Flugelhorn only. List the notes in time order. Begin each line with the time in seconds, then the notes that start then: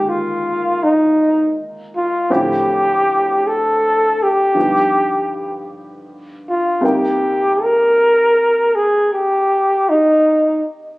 Already playing: G4
0.09 F4
0.83 D#4
1.96 F4
2.33 G4
3.47 A4
4.23 G4
6.50 F4
6.87 G4
7.63 A#4
8.76 G#4
9.13 G4
9.89 D#4